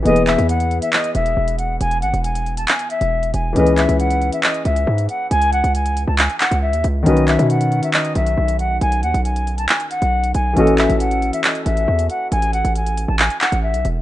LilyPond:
<<
  \new Staff \with { instrumentName = "Flute" } { \time 4/4 \key e \major \tempo 4 = 137 dis''8 e''8 fis''8. e''16 dis''8 e''4 fis''8 | gis''8 fis''8 gis''8. a''16 gis''8 e''4 gis''8 | dis''8 e''8 fis''8. e''16 dis''8 e''4 fis''8 | gis''8 fis''8 gis''8. a''16 gis''8 fis''8 e''4 |
dis''8 e''8 fis''8. e''16 dis''8 e''4 fis''8 | gis''8 fis''8 gis''8. a''16 gis''8 fis''4 gis''8 | dis''8 e''8 fis''8. e''16 dis''8 e''4 fis''8 | gis''8 fis''8 gis''8. a''16 gis''8 fis''8 e''4 | }
  \new Staff \with { instrumentName = "Felt piano" } { \time 4/4 \key e \major <e b gis' b'>1~ | <e b gis' b'>1 | <e cis' gis' b'>1~ | <e cis' gis' b'>1 |
<dis cis' fis' b'>1~ | <dis cis' fis' b'>1 | <e cis' fis' a'>1~ | <e cis' fis' a'>1 | }
  \new Staff \with { instrumentName = "808-style bass" } { \clef bass \time 4/4 \key e \major e,,8. e,4 r8. e,,8 e,,4 | e,,8 gis,,16 e,,4~ e,,16 r8. e,,8. e,,8 | cis,8. cis,4 r8. cis,8 gis,8 r8 | cis,8. cis,4 cis,8 r8 cis,8 dis,16 cis,8 |
b,,8. b,4 r8. b,,8 b,,4 | b,,8 dis,16 b,,4~ b,,16 r8. b,,8. b,,8 | a,,8. a,,4 r8. a,,8 e,8 r8 | a,,8. a,,4 a,,8 r8 a,,8 b,,16 e,,8 | }
  \new DrumStaff \with { instrumentName = "Drums" } \drummode { \time 4/4 hh16 hh16 <hc hh>16 hh16 hh16 hh16 hh16 hh16 <hc hh>16 hh16 hh16 hh16 r16 hh16 hh8 | hh16 hh16 hh16 hh16 hh16 hh16 hh16 hh16 <hc hh>16 hh16 hh16 hh16 r16 hh16 hh8 | hh16 hh16 <hc hh>16 hh16 hh16 hh16 hh16 hh16 <hc hh>16 hh16 hh16 hh16 r16 hh16 hh8 | hh16 hh16 hh16 hh16 hh16 hh16 hh8 <hc hh>16 hh16 <hc hh>16 hh16 r16 hh16 hh8 |
hh16 hh16 <hc hh>16 hh16 hh16 hh16 hh16 hh16 <hc hh>16 hh16 hh16 hh16 r16 hh16 hh8 | hh16 hh16 hh16 hh16 hh16 hh16 hh16 hh16 <hc hh>16 hh16 hh16 hh16 r16 hh16 hh8 | hh16 hh16 <hc hh>16 hh16 hh16 hh16 hh16 hh16 <hc hh>16 hh16 hh16 hh16 r16 hh16 hh8 | hh16 hh16 hh16 hh16 hh16 hh16 hh8 <hc hh>16 hh16 <hc hh>16 hh16 r16 hh16 hh8 | }
>>